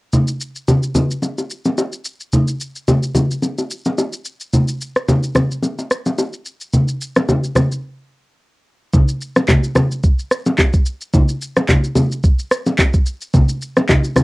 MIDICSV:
0, 0, Header, 1, 2, 480
1, 0, Start_track
1, 0, Tempo, 550459
1, 112, Time_signature, 4, 2, 24, 8
1, 12414, End_track
2, 0, Start_track
2, 0, Title_t, "Drums"
2, 112, Note_on_c, 9, 82, 68
2, 114, Note_on_c, 9, 64, 72
2, 199, Note_off_c, 9, 82, 0
2, 201, Note_off_c, 9, 64, 0
2, 241, Note_on_c, 9, 82, 61
2, 328, Note_off_c, 9, 82, 0
2, 355, Note_on_c, 9, 82, 84
2, 442, Note_off_c, 9, 82, 0
2, 484, Note_on_c, 9, 82, 44
2, 572, Note_off_c, 9, 82, 0
2, 593, Note_on_c, 9, 60, 74
2, 593, Note_on_c, 9, 64, 72
2, 594, Note_on_c, 9, 82, 61
2, 681, Note_off_c, 9, 60, 0
2, 681, Note_off_c, 9, 64, 0
2, 681, Note_off_c, 9, 82, 0
2, 723, Note_on_c, 9, 82, 48
2, 811, Note_off_c, 9, 82, 0
2, 826, Note_on_c, 9, 60, 47
2, 826, Note_on_c, 9, 61, 67
2, 826, Note_on_c, 9, 64, 68
2, 830, Note_on_c, 9, 82, 91
2, 913, Note_off_c, 9, 60, 0
2, 913, Note_off_c, 9, 61, 0
2, 913, Note_off_c, 9, 64, 0
2, 917, Note_off_c, 9, 82, 0
2, 966, Note_on_c, 9, 82, 51
2, 1054, Note_off_c, 9, 82, 0
2, 1065, Note_on_c, 9, 61, 49
2, 1070, Note_on_c, 9, 82, 65
2, 1152, Note_off_c, 9, 61, 0
2, 1158, Note_off_c, 9, 82, 0
2, 1205, Note_on_c, 9, 82, 45
2, 1206, Note_on_c, 9, 60, 44
2, 1292, Note_off_c, 9, 82, 0
2, 1293, Note_off_c, 9, 60, 0
2, 1313, Note_on_c, 9, 82, 90
2, 1400, Note_off_c, 9, 82, 0
2, 1441, Note_on_c, 9, 82, 47
2, 1444, Note_on_c, 9, 61, 64
2, 1528, Note_off_c, 9, 82, 0
2, 1531, Note_off_c, 9, 61, 0
2, 1553, Note_on_c, 9, 60, 64
2, 1553, Note_on_c, 9, 82, 69
2, 1640, Note_off_c, 9, 60, 0
2, 1640, Note_off_c, 9, 82, 0
2, 1681, Note_on_c, 9, 82, 57
2, 1768, Note_off_c, 9, 82, 0
2, 1788, Note_on_c, 9, 82, 80
2, 1875, Note_off_c, 9, 82, 0
2, 1922, Note_on_c, 9, 82, 46
2, 2009, Note_off_c, 9, 82, 0
2, 2030, Note_on_c, 9, 82, 72
2, 2034, Note_on_c, 9, 64, 75
2, 2118, Note_off_c, 9, 82, 0
2, 2121, Note_off_c, 9, 64, 0
2, 2161, Note_on_c, 9, 82, 60
2, 2248, Note_off_c, 9, 82, 0
2, 2275, Note_on_c, 9, 82, 82
2, 2362, Note_off_c, 9, 82, 0
2, 2404, Note_on_c, 9, 82, 44
2, 2492, Note_off_c, 9, 82, 0
2, 2513, Note_on_c, 9, 60, 73
2, 2513, Note_on_c, 9, 64, 73
2, 2514, Note_on_c, 9, 82, 60
2, 2601, Note_off_c, 9, 60, 0
2, 2601, Note_off_c, 9, 64, 0
2, 2601, Note_off_c, 9, 82, 0
2, 2644, Note_on_c, 9, 82, 51
2, 2731, Note_off_c, 9, 82, 0
2, 2746, Note_on_c, 9, 60, 45
2, 2746, Note_on_c, 9, 61, 64
2, 2746, Note_on_c, 9, 64, 64
2, 2751, Note_on_c, 9, 82, 95
2, 2833, Note_off_c, 9, 60, 0
2, 2833, Note_off_c, 9, 61, 0
2, 2833, Note_off_c, 9, 64, 0
2, 2838, Note_off_c, 9, 82, 0
2, 2888, Note_on_c, 9, 82, 53
2, 2975, Note_off_c, 9, 82, 0
2, 2986, Note_on_c, 9, 61, 51
2, 2991, Note_on_c, 9, 82, 67
2, 3073, Note_off_c, 9, 61, 0
2, 3079, Note_off_c, 9, 82, 0
2, 3125, Note_on_c, 9, 82, 45
2, 3127, Note_on_c, 9, 60, 47
2, 3213, Note_off_c, 9, 82, 0
2, 3214, Note_off_c, 9, 60, 0
2, 3233, Note_on_c, 9, 82, 90
2, 3321, Note_off_c, 9, 82, 0
2, 3362, Note_on_c, 9, 82, 49
2, 3366, Note_on_c, 9, 61, 63
2, 3449, Note_off_c, 9, 82, 0
2, 3453, Note_off_c, 9, 61, 0
2, 3473, Note_on_c, 9, 60, 59
2, 3473, Note_on_c, 9, 82, 72
2, 3560, Note_off_c, 9, 60, 0
2, 3560, Note_off_c, 9, 82, 0
2, 3602, Note_on_c, 9, 82, 57
2, 3689, Note_off_c, 9, 82, 0
2, 3708, Note_on_c, 9, 82, 82
2, 3796, Note_off_c, 9, 82, 0
2, 3843, Note_on_c, 9, 82, 49
2, 3930, Note_off_c, 9, 82, 0
2, 3952, Note_on_c, 9, 82, 74
2, 3954, Note_on_c, 9, 64, 71
2, 4039, Note_off_c, 9, 82, 0
2, 4041, Note_off_c, 9, 64, 0
2, 4082, Note_on_c, 9, 82, 62
2, 4169, Note_off_c, 9, 82, 0
2, 4196, Note_on_c, 9, 82, 87
2, 4283, Note_off_c, 9, 82, 0
2, 4325, Note_on_c, 9, 82, 47
2, 4326, Note_on_c, 9, 37, 86
2, 4413, Note_off_c, 9, 37, 0
2, 4413, Note_off_c, 9, 82, 0
2, 4434, Note_on_c, 9, 60, 72
2, 4434, Note_on_c, 9, 64, 74
2, 4435, Note_on_c, 9, 82, 63
2, 4521, Note_off_c, 9, 60, 0
2, 4521, Note_off_c, 9, 64, 0
2, 4522, Note_off_c, 9, 82, 0
2, 4564, Note_on_c, 9, 82, 50
2, 4651, Note_off_c, 9, 82, 0
2, 4666, Note_on_c, 9, 60, 48
2, 4666, Note_on_c, 9, 61, 67
2, 4666, Note_on_c, 9, 64, 65
2, 4670, Note_on_c, 9, 82, 92
2, 4671, Note_on_c, 9, 37, 87
2, 4753, Note_off_c, 9, 60, 0
2, 4753, Note_off_c, 9, 61, 0
2, 4753, Note_off_c, 9, 64, 0
2, 4757, Note_off_c, 9, 82, 0
2, 4758, Note_off_c, 9, 37, 0
2, 4808, Note_on_c, 9, 82, 52
2, 4896, Note_off_c, 9, 82, 0
2, 4906, Note_on_c, 9, 61, 51
2, 4913, Note_on_c, 9, 82, 68
2, 4994, Note_off_c, 9, 61, 0
2, 5000, Note_off_c, 9, 82, 0
2, 5047, Note_on_c, 9, 60, 46
2, 5047, Note_on_c, 9, 82, 45
2, 5134, Note_off_c, 9, 60, 0
2, 5134, Note_off_c, 9, 82, 0
2, 5153, Note_on_c, 9, 37, 84
2, 5155, Note_on_c, 9, 82, 87
2, 5241, Note_off_c, 9, 37, 0
2, 5242, Note_off_c, 9, 82, 0
2, 5283, Note_on_c, 9, 82, 50
2, 5286, Note_on_c, 9, 61, 64
2, 5370, Note_off_c, 9, 82, 0
2, 5373, Note_off_c, 9, 61, 0
2, 5393, Note_on_c, 9, 60, 61
2, 5394, Note_on_c, 9, 82, 71
2, 5480, Note_off_c, 9, 60, 0
2, 5481, Note_off_c, 9, 82, 0
2, 5522, Note_on_c, 9, 82, 56
2, 5609, Note_off_c, 9, 82, 0
2, 5629, Note_on_c, 9, 82, 81
2, 5717, Note_off_c, 9, 82, 0
2, 5763, Note_on_c, 9, 82, 48
2, 5851, Note_off_c, 9, 82, 0
2, 5872, Note_on_c, 9, 82, 77
2, 5873, Note_on_c, 9, 64, 71
2, 5959, Note_off_c, 9, 82, 0
2, 5960, Note_off_c, 9, 64, 0
2, 6001, Note_on_c, 9, 82, 61
2, 6088, Note_off_c, 9, 82, 0
2, 6115, Note_on_c, 9, 82, 88
2, 6203, Note_off_c, 9, 82, 0
2, 6245, Note_on_c, 9, 37, 90
2, 6245, Note_on_c, 9, 82, 45
2, 6247, Note_on_c, 9, 61, 69
2, 6332, Note_off_c, 9, 37, 0
2, 6332, Note_off_c, 9, 82, 0
2, 6334, Note_off_c, 9, 61, 0
2, 6352, Note_on_c, 9, 60, 73
2, 6352, Note_on_c, 9, 64, 74
2, 6355, Note_on_c, 9, 82, 65
2, 6440, Note_off_c, 9, 60, 0
2, 6440, Note_off_c, 9, 64, 0
2, 6442, Note_off_c, 9, 82, 0
2, 6484, Note_on_c, 9, 82, 51
2, 6571, Note_off_c, 9, 82, 0
2, 6585, Note_on_c, 9, 60, 47
2, 6585, Note_on_c, 9, 61, 65
2, 6585, Note_on_c, 9, 64, 70
2, 6591, Note_on_c, 9, 37, 88
2, 6591, Note_on_c, 9, 82, 91
2, 6672, Note_off_c, 9, 60, 0
2, 6672, Note_off_c, 9, 61, 0
2, 6672, Note_off_c, 9, 64, 0
2, 6678, Note_off_c, 9, 82, 0
2, 6679, Note_off_c, 9, 37, 0
2, 6728, Note_on_c, 9, 82, 54
2, 6815, Note_off_c, 9, 82, 0
2, 7791, Note_on_c, 9, 36, 107
2, 7791, Note_on_c, 9, 82, 75
2, 7793, Note_on_c, 9, 64, 76
2, 7879, Note_off_c, 9, 36, 0
2, 7879, Note_off_c, 9, 82, 0
2, 7880, Note_off_c, 9, 64, 0
2, 7921, Note_on_c, 9, 82, 64
2, 8008, Note_off_c, 9, 82, 0
2, 8035, Note_on_c, 9, 82, 91
2, 8122, Note_off_c, 9, 82, 0
2, 8164, Note_on_c, 9, 37, 90
2, 8164, Note_on_c, 9, 82, 46
2, 8166, Note_on_c, 9, 61, 68
2, 8251, Note_off_c, 9, 82, 0
2, 8252, Note_off_c, 9, 37, 0
2, 8254, Note_off_c, 9, 61, 0
2, 8271, Note_on_c, 9, 36, 82
2, 8271, Note_on_c, 9, 60, 76
2, 8271, Note_on_c, 9, 64, 73
2, 8272, Note_on_c, 9, 39, 96
2, 8273, Note_on_c, 9, 82, 63
2, 8359, Note_off_c, 9, 36, 0
2, 8359, Note_off_c, 9, 39, 0
2, 8359, Note_off_c, 9, 60, 0
2, 8359, Note_off_c, 9, 64, 0
2, 8361, Note_off_c, 9, 82, 0
2, 8404, Note_on_c, 9, 82, 53
2, 8491, Note_off_c, 9, 82, 0
2, 8505, Note_on_c, 9, 60, 48
2, 8505, Note_on_c, 9, 61, 70
2, 8505, Note_on_c, 9, 64, 68
2, 8510, Note_on_c, 9, 37, 91
2, 8510, Note_on_c, 9, 82, 94
2, 8592, Note_off_c, 9, 60, 0
2, 8592, Note_off_c, 9, 61, 0
2, 8592, Note_off_c, 9, 64, 0
2, 8597, Note_off_c, 9, 82, 0
2, 8598, Note_off_c, 9, 37, 0
2, 8647, Note_on_c, 9, 82, 53
2, 8734, Note_off_c, 9, 82, 0
2, 8751, Note_on_c, 9, 82, 67
2, 8753, Note_on_c, 9, 36, 112
2, 8838, Note_off_c, 9, 82, 0
2, 8840, Note_off_c, 9, 36, 0
2, 8885, Note_on_c, 9, 82, 47
2, 8972, Note_off_c, 9, 82, 0
2, 8992, Note_on_c, 9, 37, 90
2, 8993, Note_on_c, 9, 82, 88
2, 9079, Note_off_c, 9, 37, 0
2, 9080, Note_off_c, 9, 82, 0
2, 9122, Note_on_c, 9, 82, 51
2, 9124, Note_on_c, 9, 61, 67
2, 9209, Note_off_c, 9, 82, 0
2, 9211, Note_off_c, 9, 61, 0
2, 9230, Note_on_c, 9, 36, 93
2, 9230, Note_on_c, 9, 39, 95
2, 9231, Note_on_c, 9, 60, 66
2, 9233, Note_on_c, 9, 82, 73
2, 9317, Note_off_c, 9, 36, 0
2, 9318, Note_off_c, 9, 39, 0
2, 9318, Note_off_c, 9, 60, 0
2, 9320, Note_off_c, 9, 82, 0
2, 9362, Note_on_c, 9, 82, 58
2, 9363, Note_on_c, 9, 36, 89
2, 9449, Note_off_c, 9, 82, 0
2, 9451, Note_off_c, 9, 36, 0
2, 9468, Note_on_c, 9, 82, 83
2, 9556, Note_off_c, 9, 82, 0
2, 9603, Note_on_c, 9, 82, 49
2, 9690, Note_off_c, 9, 82, 0
2, 9711, Note_on_c, 9, 36, 113
2, 9711, Note_on_c, 9, 82, 77
2, 9713, Note_on_c, 9, 64, 75
2, 9798, Note_off_c, 9, 36, 0
2, 9798, Note_off_c, 9, 82, 0
2, 9800, Note_off_c, 9, 64, 0
2, 9841, Note_on_c, 9, 82, 60
2, 9928, Note_off_c, 9, 82, 0
2, 9956, Note_on_c, 9, 82, 92
2, 10043, Note_off_c, 9, 82, 0
2, 10085, Note_on_c, 9, 82, 47
2, 10086, Note_on_c, 9, 37, 89
2, 10086, Note_on_c, 9, 61, 67
2, 10172, Note_off_c, 9, 82, 0
2, 10173, Note_off_c, 9, 37, 0
2, 10173, Note_off_c, 9, 61, 0
2, 10192, Note_on_c, 9, 36, 80
2, 10192, Note_on_c, 9, 60, 76
2, 10192, Note_on_c, 9, 64, 73
2, 10193, Note_on_c, 9, 39, 91
2, 10194, Note_on_c, 9, 82, 66
2, 10279, Note_off_c, 9, 36, 0
2, 10279, Note_off_c, 9, 60, 0
2, 10279, Note_off_c, 9, 64, 0
2, 10280, Note_off_c, 9, 39, 0
2, 10282, Note_off_c, 9, 82, 0
2, 10324, Note_on_c, 9, 82, 50
2, 10412, Note_off_c, 9, 82, 0
2, 10425, Note_on_c, 9, 60, 50
2, 10425, Note_on_c, 9, 61, 66
2, 10425, Note_on_c, 9, 64, 68
2, 10431, Note_on_c, 9, 82, 96
2, 10512, Note_off_c, 9, 60, 0
2, 10512, Note_off_c, 9, 61, 0
2, 10512, Note_off_c, 9, 64, 0
2, 10518, Note_off_c, 9, 82, 0
2, 10568, Note_on_c, 9, 82, 53
2, 10655, Note_off_c, 9, 82, 0
2, 10672, Note_on_c, 9, 82, 72
2, 10673, Note_on_c, 9, 36, 109
2, 10759, Note_off_c, 9, 82, 0
2, 10761, Note_off_c, 9, 36, 0
2, 10806, Note_on_c, 9, 82, 47
2, 10893, Note_off_c, 9, 82, 0
2, 10912, Note_on_c, 9, 37, 95
2, 10914, Note_on_c, 9, 82, 91
2, 11000, Note_off_c, 9, 37, 0
2, 11001, Note_off_c, 9, 82, 0
2, 11042, Note_on_c, 9, 82, 48
2, 11044, Note_on_c, 9, 61, 66
2, 11129, Note_off_c, 9, 82, 0
2, 11131, Note_off_c, 9, 61, 0
2, 11151, Note_on_c, 9, 36, 96
2, 11151, Note_on_c, 9, 39, 100
2, 11152, Note_on_c, 9, 60, 65
2, 11154, Note_on_c, 9, 82, 75
2, 11238, Note_off_c, 9, 36, 0
2, 11238, Note_off_c, 9, 39, 0
2, 11240, Note_off_c, 9, 60, 0
2, 11241, Note_off_c, 9, 82, 0
2, 11282, Note_on_c, 9, 82, 57
2, 11284, Note_on_c, 9, 36, 88
2, 11369, Note_off_c, 9, 82, 0
2, 11371, Note_off_c, 9, 36, 0
2, 11390, Note_on_c, 9, 82, 81
2, 11477, Note_off_c, 9, 82, 0
2, 11524, Note_on_c, 9, 82, 50
2, 11611, Note_off_c, 9, 82, 0
2, 11632, Note_on_c, 9, 36, 111
2, 11632, Note_on_c, 9, 82, 75
2, 11634, Note_on_c, 9, 64, 76
2, 11719, Note_off_c, 9, 36, 0
2, 11719, Note_off_c, 9, 82, 0
2, 11721, Note_off_c, 9, 64, 0
2, 11762, Note_on_c, 9, 82, 64
2, 11849, Note_off_c, 9, 82, 0
2, 11876, Note_on_c, 9, 82, 91
2, 11963, Note_off_c, 9, 82, 0
2, 12005, Note_on_c, 9, 82, 49
2, 12006, Note_on_c, 9, 37, 88
2, 12008, Note_on_c, 9, 61, 69
2, 12092, Note_off_c, 9, 82, 0
2, 12093, Note_off_c, 9, 37, 0
2, 12095, Note_off_c, 9, 61, 0
2, 12112, Note_on_c, 9, 36, 83
2, 12113, Note_on_c, 9, 39, 92
2, 12113, Note_on_c, 9, 60, 78
2, 12113, Note_on_c, 9, 64, 76
2, 12115, Note_on_c, 9, 82, 63
2, 12199, Note_off_c, 9, 36, 0
2, 12200, Note_off_c, 9, 39, 0
2, 12201, Note_off_c, 9, 60, 0
2, 12201, Note_off_c, 9, 64, 0
2, 12202, Note_off_c, 9, 82, 0
2, 12244, Note_on_c, 9, 82, 49
2, 12331, Note_off_c, 9, 82, 0
2, 12346, Note_on_c, 9, 60, 47
2, 12346, Note_on_c, 9, 61, 66
2, 12346, Note_on_c, 9, 64, 67
2, 12350, Note_on_c, 9, 82, 94
2, 12351, Note_on_c, 9, 37, 89
2, 12414, Note_off_c, 9, 37, 0
2, 12414, Note_off_c, 9, 60, 0
2, 12414, Note_off_c, 9, 61, 0
2, 12414, Note_off_c, 9, 64, 0
2, 12414, Note_off_c, 9, 82, 0
2, 12414, End_track
0, 0, End_of_file